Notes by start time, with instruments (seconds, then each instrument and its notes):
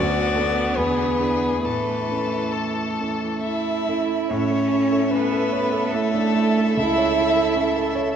Already playing: grand piano D2, cello D3, viola B3, violin F#4 D5
0.35 grand piano B3 F#4 A4
0.76 grand piano E2, violin G#4 B4
1.20 grand piano D4 E4 G#4, violin G#4
1.64 grand piano A2, cello E3, viola A3, violin A4 B4
2.11 grand piano C#4 E4 A4
2.52 violin A4
3.00 grand piano C#4 E4 A4
3.43 cello E4, violin E5
3.88 grand piano C#4 E4 A4
4.30 grand piano A2, cello C#4, viola A4, violin C#5 E5
4.50 grand piano C#5
4.71 grand piano E4
4.91 grand piano A4
5.11 grand piano C#4, violin B4
5.15 cello B3
5.32 grand piano A4
5.52 grand piano C#5
5.72 grand piano A4
5.90 grand piano E4, violin A4
5.95 cello A3
6.14 grand piano D4
6.35 grand piano E4
6.57 grand piano A4
6.77 grand piano C#2, cello E4, violin E5
6.98 grand piano C#5
7.16 grand piano E4
7.36 grand piano A4
7.56 grand piano C#4
7.76 grand piano A4
7.95 grand piano C#5